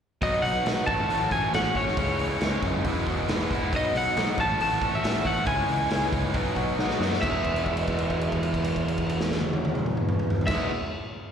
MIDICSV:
0, 0, Header, 1, 5, 480
1, 0, Start_track
1, 0, Key_signature, 4, "major"
1, 0, Tempo, 438276
1, 243, Time_signature, 4, 2, 24, 8
1, 12395, End_track
2, 0, Start_track
2, 0, Title_t, "Lead electric guitar"
2, 0, Program_c, 0, 29
2, 251, Note_on_c, 0, 75, 84
2, 463, Note_on_c, 0, 78, 91
2, 495, Note_off_c, 0, 75, 0
2, 919, Note_off_c, 0, 78, 0
2, 947, Note_on_c, 0, 81, 96
2, 1442, Note_off_c, 0, 81, 0
2, 1447, Note_on_c, 0, 80, 86
2, 1691, Note_off_c, 0, 80, 0
2, 1696, Note_on_c, 0, 78, 87
2, 1931, Note_on_c, 0, 73, 71
2, 1936, Note_off_c, 0, 78, 0
2, 2842, Note_off_c, 0, 73, 0
2, 4120, Note_on_c, 0, 75, 90
2, 4323, Note_off_c, 0, 75, 0
2, 4352, Note_on_c, 0, 78, 99
2, 4821, Note_off_c, 0, 78, 0
2, 4825, Note_on_c, 0, 81, 102
2, 5034, Note_off_c, 0, 81, 0
2, 5057, Note_on_c, 0, 81, 107
2, 5415, Note_off_c, 0, 81, 0
2, 5421, Note_on_c, 0, 76, 98
2, 5769, Note_on_c, 0, 78, 88
2, 5777, Note_off_c, 0, 76, 0
2, 5985, Note_off_c, 0, 78, 0
2, 5991, Note_on_c, 0, 80, 82
2, 7386, Note_off_c, 0, 80, 0
2, 7904, Note_on_c, 0, 76, 79
2, 11369, Note_off_c, 0, 76, 0
2, 11463, Note_on_c, 0, 76, 81
2, 11670, Note_off_c, 0, 76, 0
2, 12395, End_track
3, 0, Start_track
3, 0, Title_t, "Overdriven electric guitar"
3, 0, Program_c, 1, 29
3, 237, Note_on_c, 1, 47, 89
3, 251, Note_on_c, 1, 54, 94
3, 254, Note_on_c, 1, 63, 89
3, 257, Note_on_c, 1, 59, 86
3, 269, Note_on_c, 1, 66, 103
3, 712, Note_off_c, 1, 47, 0
3, 725, Note_on_c, 1, 47, 82
3, 726, Note_off_c, 1, 54, 0
3, 735, Note_off_c, 1, 63, 0
3, 737, Note_off_c, 1, 59, 0
3, 738, Note_off_c, 1, 66, 0
3, 739, Note_on_c, 1, 54, 83
3, 749, Note_on_c, 1, 63, 84
3, 750, Note_on_c, 1, 59, 89
3, 751, Note_on_c, 1, 66, 91
3, 946, Note_off_c, 1, 66, 0
3, 950, Note_off_c, 1, 47, 0
3, 957, Note_off_c, 1, 54, 0
3, 960, Note_on_c, 1, 66, 72
3, 962, Note_off_c, 1, 59, 0
3, 962, Note_off_c, 1, 63, 0
3, 969, Note_on_c, 1, 61, 73
3, 971, Note_on_c, 1, 57, 74
3, 975, Note_on_c, 1, 45, 66
3, 979, Note_on_c, 1, 54, 65
3, 1179, Note_off_c, 1, 54, 0
3, 1191, Note_off_c, 1, 57, 0
3, 1192, Note_on_c, 1, 54, 70
3, 1198, Note_off_c, 1, 61, 0
3, 1202, Note_off_c, 1, 66, 0
3, 1205, Note_on_c, 1, 57, 66
3, 1211, Note_on_c, 1, 61, 71
3, 1215, Note_on_c, 1, 66, 71
3, 1426, Note_off_c, 1, 66, 0
3, 1439, Note_on_c, 1, 66, 64
3, 1442, Note_off_c, 1, 61, 0
3, 1449, Note_off_c, 1, 45, 0
3, 1455, Note_on_c, 1, 61, 57
3, 1456, Note_off_c, 1, 57, 0
3, 1469, Note_on_c, 1, 57, 52
3, 1665, Note_off_c, 1, 57, 0
3, 1668, Note_off_c, 1, 54, 0
3, 1678, Note_off_c, 1, 61, 0
3, 1678, Note_on_c, 1, 57, 64
3, 1681, Note_on_c, 1, 54, 66
3, 1691, Note_off_c, 1, 66, 0
3, 1691, Note_on_c, 1, 61, 72
3, 1705, Note_on_c, 1, 66, 69
3, 1920, Note_off_c, 1, 66, 0
3, 1926, Note_off_c, 1, 61, 0
3, 1933, Note_on_c, 1, 66, 68
3, 1939, Note_on_c, 1, 61, 63
3, 1941, Note_off_c, 1, 57, 0
3, 1954, Note_on_c, 1, 57, 55
3, 2147, Note_off_c, 1, 54, 0
3, 2153, Note_off_c, 1, 66, 0
3, 2156, Note_off_c, 1, 61, 0
3, 2164, Note_off_c, 1, 57, 0
3, 2169, Note_on_c, 1, 52, 88
3, 2171, Note_on_c, 1, 49, 90
3, 2174, Note_on_c, 1, 56, 92
3, 2184, Note_on_c, 1, 61, 94
3, 2187, Note_on_c, 1, 64, 95
3, 2646, Note_off_c, 1, 49, 0
3, 2651, Note_off_c, 1, 52, 0
3, 2658, Note_off_c, 1, 61, 0
3, 2659, Note_off_c, 1, 56, 0
3, 2659, Note_on_c, 1, 49, 92
3, 2664, Note_on_c, 1, 52, 91
3, 2667, Note_off_c, 1, 64, 0
3, 2672, Note_on_c, 1, 56, 95
3, 2672, Note_on_c, 1, 61, 97
3, 2680, Note_on_c, 1, 64, 91
3, 3115, Note_off_c, 1, 49, 0
3, 3118, Note_off_c, 1, 52, 0
3, 3120, Note_on_c, 1, 40, 90
3, 3121, Note_off_c, 1, 61, 0
3, 3122, Note_off_c, 1, 56, 0
3, 3125, Note_off_c, 1, 64, 0
3, 3129, Note_on_c, 1, 47, 90
3, 3139, Note_on_c, 1, 56, 88
3, 3140, Note_on_c, 1, 52, 91
3, 3143, Note_on_c, 1, 59, 91
3, 3155, Note_on_c, 1, 64, 85
3, 3352, Note_off_c, 1, 64, 0
3, 3362, Note_off_c, 1, 59, 0
3, 3365, Note_on_c, 1, 64, 62
3, 3368, Note_off_c, 1, 52, 0
3, 3368, Note_off_c, 1, 56, 0
3, 3375, Note_on_c, 1, 59, 65
3, 3381, Note_on_c, 1, 52, 52
3, 3381, Note_on_c, 1, 56, 51
3, 3591, Note_off_c, 1, 52, 0
3, 3598, Note_off_c, 1, 56, 0
3, 3599, Note_off_c, 1, 40, 0
3, 3604, Note_off_c, 1, 47, 0
3, 3604, Note_on_c, 1, 52, 68
3, 3606, Note_off_c, 1, 59, 0
3, 3611, Note_off_c, 1, 64, 0
3, 3612, Note_on_c, 1, 56, 72
3, 3620, Note_on_c, 1, 59, 72
3, 3624, Note_on_c, 1, 64, 78
3, 3849, Note_off_c, 1, 64, 0
3, 3850, Note_off_c, 1, 59, 0
3, 3859, Note_off_c, 1, 56, 0
3, 3862, Note_on_c, 1, 64, 77
3, 3863, Note_on_c, 1, 59, 61
3, 3866, Note_off_c, 1, 52, 0
3, 3872, Note_on_c, 1, 56, 64
3, 3879, Note_on_c, 1, 52, 59
3, 4075, Note_off_c, 1, 64, 0
3, 4076, Note_off_c, 1, 59, 0
3, 4080, Note_off_c, 1, 56, 0
3, 4084, Note_off_c, 1, 52, 0
3, 4084, Note_on_c, 1, 47, 91
3, 4091, Note_on_c, 1, 54, 87
3, 4097, Note_on_c, 1, 59, 94
3, 4101, Note_on_c, 1, 63, 96
3, 4108, Note_on_c, 1, 66, 93
3, 4557, Note_off_c, 1, 47, 0
3, 4559, Note_off_c, 1, 54, 0
3, 4569, Note_off_c, 1, 63, 0
3, 4570, Note_on_c, 1, 47, 85
3, 4572, Note_off_c, 1, 59, 0
3, 4572, Note_on_c, 1, 54, 100
3, 4580, Note_off_c, 1, 66, 0
3, 4582, Note_on_c, 1, 63, 100
3, 4585, Note_on_c, 1, 59, 96
3, 4594, Note_on_c, 1, 66, 92
3, 4788, Note_off_c, 1, 47, 0
3, 4789, Note_off_c, 1, 54, 0
3, 4794, Note_off_c, 1, 63, 0
3, 4796, Note_off_c, 1, 59, 0
3, 4800, Note_off_c, 1, 66, 0
3, 4814, Note_on_c, 1, 66, 84
3, 4819, Note_on_c, 1, 57, 84
3, 4819, Note_on_c, 1, 61, 84
3, 4828, Note_on_c, 1, 54, 75
3, 4831, Note_on_c, 1, 45, 71
3, 5029, Note_off_c, 1, 54, 0
3, 5042, Note_on_c, 1, 54, 65
3, 5043, Note_off_c, 1, 57, 0
3, 5044, Note_off_c, 1, 61, 0
3, 5056, Note_on_c, 1, 57, 69
3, 5057, Note_on_c, 1, 61, 79
3, 5060, Note_off_c, 1, 66, 0
3, 5073, Note_on_c, 1, 66, 81
3, 5270, Note_off_c, 1, 66, 0
3, 5282, Note_off_c, 1, 61, 0
3, 5283, Note_on_c, 1, 66, 72
3, 5287, Note_off_c, 1, 57, 0
3, 5292, Note_off_c, 1, 45, 0
3, 5295, Note_on_c, 1, 61, 60
3, 5300, Note_on_c, 1, 57, 53
3, 5498, Note_off_c, 1, 54, 0
3, 5503, Note_off_c, 1, 57, 0
3, 5511, Note_on_c, 1, 54, 64
3, 5513, Note_off_c, 1, 61, 0
3, 5513, Note_off_c, 1, 66, 0
3, 5516, Note_on_c, 1, 57, 69
3, 5526, Note_on_c, 1, 61, 73
3, 5526, Note_on_c, 1, 66, 74
3, 5733, Note_off_c, 1, 66, 0
3, 5741, Note_off_c, 1, 61, 0
3, 5747, Note_on_c, 1, 66, 68
3, 5754, Note_on_c, 1, 61, 58
3, 5757, Note_off_c, 1, 57, 0
3, 5770, Note_on_c, 1, 57, 64
3, 5975, Note_off_c, 1, 66, 0
3, 5977, Note_off_c, 1, 54, 0
3, 5979, Note_off_c, 1, 61, 0
3, 5986, Note_on_c, 1, 49, 88
3, 5987, Note_off_c, 1, 57, 0
3, 5998, Note_on_c, 1, 52, 93
3, 5999, Note_on_c, 1, 56, 101
3, 6008, Note_on_c, 1, 61, 108
3, 6011, Note_on_c, 1, 64, 106
3, 6446, Note_off_c, 1, 49, 0
3, 6452, Note_off_c, 1, 52, 0
3, 6455, Note_off_c, 1, 56, 0
3, 6459, Note_on_c, 1, 49, 88
3, 6460, Note_off_c, 1, 61, 0
3, 6465, Note_on_c, 1, 52, 91
3, 6466, Note_off_c, 1, 64, 0
3, 6468, Note_on_c, 1, 56, 90
3, 6473, Note_on_c, 1, 61, 104
3, 6479, Note_on_c, 1, 64, 93
3, 6930, Note_off_c, 1, 49, 0
3, 6933, Note_off_c, 1, 52, 0
3, 6935, Note_off_c, 1, 56, 0
3, 6937, Note_off_c, 1, 61, 0
3, 6938, Note_on_c, 1, 47, 84
3, 6940, Note_off_c, 1, 64, 0
3, 6940, Note_on_c, 1, 54, 81
3, 6952, Note_on_c, 1, 59, 88
3, 6958, Note_on_c, 1, 63, 92
3, 6959, Note_on_c, 1, 66, 96
3, 7182, Note_off_c, 1, 66, 0
3, 7187, Note_off_c, 1, 63, 0
3, 7191, Note_off_c, 1, 59, 0
3, 7195, Note_on_c, 1, 66, 72
3, 7200, Note_on_c, 1, 63, 62
3, 7204, Note_on_c, 1, 59, 55
3, 7423, Note_off_c, 1, 54, 0
3, 7424, Note_off_c, 1, 47, 0
3, 7436, Note_off_c, 1, 59, 0
3, 7436, Note_off_c, 1, 63, 0
3, 7436, Note_on_c, 1, 54, 66
3, 7442, Note_off_c, 1, 66, 0
3, 7449, Note_on_c, 1, 59, 68
3, 7449, Note_on_c, 1, 63, 72
3, 7455, Note_on_c, 1, 66, 81
3, 7657, Note_off_c, 1, 66, 0
3, 7662, Note_off_c, 1, 63, 0
3, 7670, Note_on_c, 1, 66, 68
3, 7675, Note_off_c, 1, 59, 0
3, 7675, Note_on_c, 1, 63, 68
3, 7688, Note_on_c, 1, 59, 59
3, 7894, Note_on_c, 1, 40, 99
3, 7896, Note_off_c, 1, 66, 0
3, 7899, Note_off_c, 1, 54, 0
3, 7899, Note_off_c, 1, 63, 0
3, 7905, Note_off_c, 1, 59, 0
3, 7908, Note_on_c, 1, 47, 99
3, 7919, Note_on_c, 1, 52, 90
3, 7929, Note_on_c, 1, 56, 98
3, 7937, Note_on_c, 1, 59, 94
3, 7950, Note_on_c, 1, 68, 98
3, 11468, Note_off_c, 1, 40, 0
3, 11472, Note_on_c, 1, 40, 84
3, 11480, Note_off_c, 1, 47, 0
3, 11484, Note_on_c, 1, 47, 92
3, 11489, Note_off_c, 1, 52, 0
3, 11493, Note_on_c, 1, 52, 82
3, 11503, Note_off_c, 1, 56, 0
3, 11506, Note_off_c, 1, 68, 0
3, 11507, Note_off_c, 1, 59, 0
3, 11507, Note_on_c, 1, 56, 95
3, 11510, Note_on_c, 1, 68, 89
3, 11511, Note_on_c, 1, 59, 88
3, 11690, Note_off_c, 1, 40, 0
3, 11696, Note_off_c, 1, 47, 0
3, 11701, Note_off_c, 1, 52, 0
3, 11708, Note_off_c, 1, 56, 0
3, 11709, Note_off_c, 1, 68, 0
3, 11710, Note_off_c, 1, 59, 0
3, 12395, End_track
4, 0, Start_track
4, 0, Title_t, "Picked electric bass"
4, 0, Program_c, 2, 34
4, 237, Note_on_c, 2, 35, 89
4, 423, Note_off_c, 2, 35, 0
4, 473, Note_on_c, 2, 35, 72
4, 661, Note_off_c, 2, 35, 0
4, 719, Note_on_c, 2, 35, 77
4, 904, Note_off_c, 2, 35, 0
4, 955, Note_on_c, 2, 33, 80
4, 1142, Note_off_c, 2, 33, 0
4, 1190, Note_on_c, 2, 33, 85
4, 1379, Note_off_c, 2, 33, 0
4, 1438, Note_on_c, 2, 33, 79
4, 1624, Note_off_c, 2, 33, 0
4, 1659, Note_on_c, 2, 33, 80
4, 1852, Note_off_c, 2, 33, 0
4, 1909, Note_on_c, 2, 33, 78
4, 2098, Note_off_c, 2, 33, 0
4, 2158, Note_on_c, 2, 37, 86
4, 2343, Note_off_c, 2, 37, 0
4, 2404, Note_on_c, 2, 37, 83
4, 2587, Note_off_c, 2, 37, 0
4, 2634, Note_on_c, 2, 37, 73
4, 2820, Note_off_c, 2, 37, 0
4, 2874, Note_on_c, 2, 42, 74
4, 3060, Note_off_c, 2, 42, 0
4, 3118, Note_on_c, 2, 28, 86
4, 3302, Note_off_c, 2, 28, 0
4, 3358, Note_on_c, 2, 28, 82
4, 3542, Note_off_c, 2, 28, 0
4, 3594, Note_on_c, 2, 28, 88
4, 3779, Note_off_c, 2, 28, 0
4, 3839, Note_on_c, 2, 28, 78
4, 4076, Note_off_c, 2, 28, 0
4, 4076, Note_on_c, 2, 35, 95
4, 4260, Note_off_c, 2, 35, 0
4, 4323, Note_on_c, 2, 35, 80
4, 4504, Note_off_c, 2, 35, 0
4, 4562, Note_on_c, 2, 35, 82
4, 4743, Note_off_c, 2, 35, 0
4, 4792, Note_on_c, 2, 33, 84
4, 4977, Note_off_c, 2, 33, 0
4, 5048, Note_on_c, 2, 33, 85
4, 5226, Note_off_c, 2, 33, 0
4, 5270, Note_on_c, 2, 33, 85
4, 5455, Note_off_c, 2, 33, 0
4, 5520, Note_on_c, 2, 33, 89
4, 5701, Note_off_c, 2, 33, 0
4, 5745, Note_on_c, 2, 33, 79
4, 5931, Note_off_c, 2, 33, 0
4, 5990, Note_on_c, 2, 37, 93
4, 6174, Note_off_c, 2, 37, 0
4, 6232, Note_on_c, 2, 37, 78
4, 6415, Note_off_c, 2, 37, 0
4, 6474, Note_on_c, 2, 37, 84
4, 6656, Note_off_c, 2, 37, 0
4, 6708, Note_on_c, 2, 37, 81
4, 6893, Note_off_c, 2, 37, 0
4, 6944, Note_on_c, 2, 35, 86
4, 7130, Note_off_c, 2, 35, 0
4, 7190, Note_on_c, 2, 35, 89
4, 7374, Note_off_c, 2, 35, 0
4, 7423, Note_on_c, 2, 35, 86
4, 7610, Note_off_c, 2, 35, 0
4, 7664, Note_on_c, 2, 42, 84
4, 7850, Note_off_c, 2, 42, 0
4, 7918, Note_on_c, 2, 28, 92
4, 11376, Note_off_c, 2, 28, 0
4, 11479, Note_on_c, 2, 28, 87
4, 11679, Note_off_c, 2, 28, 0
4, 12395, End_track
5, 0, Start_track
5, 0, Title_t, "Drums"
5, 239, Note_on_c, 9, 46, 65
5, 240, Note_on_c, 9, 36, 104
5, 349, Note_off_c, 9, 36, 0
5, 349, Note_off_c, 9, 46, 0
5, 490, Note_on_c, 9, 46, 51
5, 599, Note_off_c, 9, 46, 0
5, 721, Note_on_c, 9, 46, 67
5, 732, Note_on_c, 9, 38, 91
5, 830, Note_off_c, 9, 46, 0
5, 841, Note_off_c, 9, 38, 0
5, 959, Note_on_c, 9, 36, 100
5, 967, Note_on_c, 9, 46, 54
5, 1068, Note_off_c, 9, 36, 0
5, 1077, Note_off_c, 9, 46, 0
5, 1204, Note_on_c, 9, 46, 69
5, 1313, Note_off_c, 9, 46, 0
5, 1438, Note_on_c, 9, 36, 67
5, 1439, Note_on_c, 9, 46, 50
5, 1548, Note_off_c, 9, 36, 0
5, 1549, Note_off_c, 9, 46, 0
5, 1682, Note_on_c, 9, 46, 73
5, 1693, Note_on_c, 9, 38, 113
5, 1791, Note_off_c, 9, 46, 0
5, 1802, Note_off_c, 9, 38, 0
5, 1918, Note_on_c, 9, 36, 68
5, 1919, Note_on_c, 9, 46, 52
5, 2027, Note_off_c, 9, 36, 0
5, 2029, Note_off_c, 9, 46, 0
5, 2057, Note_on_c, 9, 38, 32
5, 2160, Note_on_c, 9, 36, 103
5, 2163, Note_on_c, 9, 46, 69
5, 2166, Note_off_c, 9, 38, 0
5, 2269, Note_off_c, 9, 36, 0
5, 2273, Note_off_c, 9, 46, 0
5, 2399, Note_on_c, 9, 46, 53
5, 2508, Note_off_c, 9, 46, 0
5, 2636, Note_on_c, 9, 46, 63
5, 2647, Note_on_c, 9, 38, 99
5, 2745, Note_off_c, 9, 46, 0
5, 2756, Note_off_c, 9, 38, 0
5, 2873, Note_on_c, 9, 46, 56
5, 2876, Note_on_c, 9, 36, 88
5, 2983, Note_off_c, 9, 46, 0
5, 2985, Note_off_c, 9, 36, 0
5, 3117, Note_on_c, 9, 46, 66
5, 3118, Note_on_c, 9, 36, 101
5, 3227, Note_off_c, 9, 46, 0
5, 3228, Note_off_c, 9, 36, 0
5, 3356, Note_on_c, 9, 46, 47
5, 3358, Note_on_c, 9, 36, 73
5, 3465, Note_off_c, 9, 46, 0
5, 3468, Note_off_c, 9, 36, 0
5, 3598, Note_on_c, 9, 46, 70
5, 3609, Note_on_c, 9, 38, 111
5, 3707, Note_off_c, 9, 46, 0
5, 3718, Note_off_c, 9, 38, 0
5, 3841, Note_on_c, 9, 36, 75
5, 3849, Note_on_c, 9, 46, 49
5, 3951, Note_off_c, 9, 36, 0
5, 3959, Note_off_c, 9, 46, 0
5, 4083, Note_on_c, 9, 36, 101
5, 4085, Note_on_c, 9, 46, 68
5, 4193, Note_off_c, 9, 36, 0
5, 4194, Note_off_c, 9, 46, 0
5, 4333, Note_on_c, 9, 46, 52
5, 4442, Note_off_c, 9, 46, 0
5, 4563, Note_on_c, 9, 46, 66
5, 4574, Note_on_c, 9, 38, 104
5, 4672, Note_off_c, 9, 46, 0
5, 4683, Note_off_c, 9, 38, 0
5, 4796, Note_on_c, 9, 36, 112
5, 4798, Note_on_c, 9, 46, 53
5, 4906, Note_off_c, 9, 36, 0
5, 4908, Note_off_c, 9, 46, 0
5, 5040, Note_on_c, 9, 46, 73
5, 5149, Note_off_c, 9, 46, 0
5, 5274, Note_on_c, 9, 36, 74
5, 5280, Note_on_c, 9, 46, 53
5, 5384, Note_off_c, 9, 36, 0
5, 5390, Note_off_c, 9, 46, 0
5, 5521, Note_on_c, 9, 46, 84
5, 5532, Note_on_c, 9, 38, 111
5, 5631, Note_off_c, 9, 46, 0
5, 5642, Note_off_c, 9, 38, 0
5, 5751, Note_on_c, 9, 36, 74
5, 5753, Note_on_c, 9, 46, 57
5, 5861, Note_off_c, 9, 36, 0
5, 5863, Note_off_c, 9, 46, 0
5, 5983, Note_on_c, 9, 46, 71
5, 5989, Note_on_c, 9, 36, 107
5, 6092, Note_off_c, 9, 46, 0
5, 6099, Note_off_c, 9, 36, 0
5, 6228, Note_on_c, 9, 46, 58
5, 6337, Note_off_c, 9, 46, 0
5, 6468, Note_on_c, 9, 46, 73
5, 6479, Note_on_c, 9, 38, 95
5, 6578, Note_off_c, 9, 46, 0
5, 6589, Note_off_c, 9, 38, 0
5, 6709, Note_on_c, 9, 36, 86
5, 6711, Note_on_c, 9, 46, 53
5, 6819, Note_off_c, 9, 36, 0
5, 6821, Note_off_c, 9, 46, 0
5, 6941, Note_on_c, 9, 46, 72
5, 6948, Note_on_c, 9, 36, 108
5, 7051, Note_off_c, 9, 46, 0
5, 7058, Note_off_c, 9, 36, 0
5, 7187, Note_on_c, 9, 46, 50
5, 7189, Note_on_c, 9, 36, 71
5, 7297, Note_off_c, 9, 46, 0
5, 7299, Note_off_c, 9, 36, 0
5, 7436, Note_on_c, 9, 38, 61
5, 7546, Note_off_c, 9, 38, 0
5, 7555, Note_on_c, 9, 38, 60
5, 7664, Note_off_c, 9, 38, 0
5, 7683, Note_on_c, 9, 38, 86
5, 7792, Note_off_c, 9, 38, 0
5, 7811, Note_on_c, 9, 38, 86
5, 7915, Note_on_c, 9, 36, 97
5, 7918, Note_on_c, 9, 49, 85
5, 7921, Note_off_c, 9, 38, 0
5, 8025, Note_off_c, 9, 36, 0
5, 8028, Note_off_c, 9, 49, 0
5, 8153, Note_on_c, 9, 49, 44
5, 8155, Note_on_c, 9, 36, 62
5, 8263, Note_off_c, 9, 49, 0
5, 8264, Note_off_c, 9, 36, 0
5, 8279, Note_on_c, 9, 57, 44
5, 8385, Note_on_c, 9, 49, 40
5, 8389, Note_off_c, 9, 57, 0
5, 8391, Note_on_c, 9, 36, 56
5, 8495, Note_off_c, 9, 49, 0
5, 8500, Note_off_c, 9, 36, 0
5, 8506, Note_on_c, 9, 57, 47
5, 8615, Note_off_c, 9, 57, 0
5, 8623, Note_on_c, 9, 49, 46
5, 8630, Note_on_c, 9, 36, 64
5, 8733, Note_off_c, 9, 49, 0
5, 8739, Note_off_c, 9, 36, 0
5, 8744, Note_on_c, 9, 57, 46
5, 8854, Note_off_c, 9, 57, 0
5, 8870, Note_on_c, 9, 49, 45
5, 8872, Note_on_c, 9, 36, 63
5, 8979, Note_off_c, 9, 49, 0
5, 8981, Note_off_c, 9, 36, 0
5, 8994, Note_on_c, 9, 57, 47
5, 9104, Note_off_c, 9, 57, 0
5, 9114, Note_on_c, 9, 36, 62
5, 9116, Note_on_c, 9, 49, 46
5, 9224, Note_off_c, 9, 36, 0
5, 9225, Note_off_c, 9, 49, 0
5, 9230, Note_on_c, 9, 57, 46
5, 9340, Note_off_c, 9, 57, 0
5, 9353, Note_on_c, 9, 36, 69
5, 9355, Note_on_c, 9, 49, 52
5, 9462, Note_off_c, 9, 36, 0
5, 9464, Note_off_c, 9, 49, 0
5, 9467, Note_on_c, 9, 57, 49
5, 9576, Note_off_c, 9, 57, 0
5, 9595, Note_on_c, 9, 36, 60
5, 9597, Note_on_c, 9, 49, 50
5, 9705, Note_off_c, 9, 36, 0
5, 9706, Note_off_c, 9, 49, 0
5, 9728, Note_on_c, 9, 57, 52
5, 9830, Note_on_c, 9, 49, 50
5, 9835, Note_on_c, 9, 36, 62
5, 9837, Note_off_c, 9, 57, 0
5, 9939, Note_off_c, 9, 49, 0
5, 9945, Note_off_c, 9, 36, 0
5, 9960, Note_on_c, 9, 57, 50
5, 10069, Note_off_c, 9, 57, 0
5, 10083, Note_on_c, 9, 38, 90
5, 10192, Note_off_c, 9, 38, 0
5, 10201, Note_on_c, 9, 38, 92
5, 10309, Note_on_c, 9, 48, 82
5, 10311, Note_off_c, 9, 38, 0
5, 10419, Note_off_c, 9, 48, 0
5, 10440, Note_on_c, 9, 48, 90
5, 10550, Note_off_c, 9, 48, 0
5, 10566, Note_on_c, 9, 48, 102
5, 10676, Note_off_c, 9, 48, 0
5, 10680, Note_on_c, 9, 47, 92
5, 10790, Note_off_c, 9, 47, 0
5, 10801, Note_on_c, 9, 47, 89
5, 10910, Note_off_c, 9, 47, 0
5, 10921, Note_on_c, 9, 45, 89
5, 11031, Note_off_c, 9, 45, 0
5, 11046, Note_on_c, 9, 45, 99
5, 11156, Note_off_c, 9, 45, 0
5, 11164, Note_on_c, 9, 45, 93
5, 11274, Note_off_c, 9, 45, 0
5, 11284, Note_on_c, 9, 43, 108
5, 11394, Note_off_c, 9, 43, 0
5, 11403, Note_on_c, 9, 43, 96
5, 11473, Note_on_c, 9, 49, 96
5, 11478, Note_on_c, 9, 36, 105
5, 11484, Note_on_c, 9, 38, 93
5, 11513, Note_off_c, 9, 43, 0
5, 11582, Note_off_c, 9, 49, 0
5, 11588, Note_off_c, 9, 36, 0
5, 11593, Note_off_c, 9, 38, 0
5, 12395, End_track
0, 0, End_of_file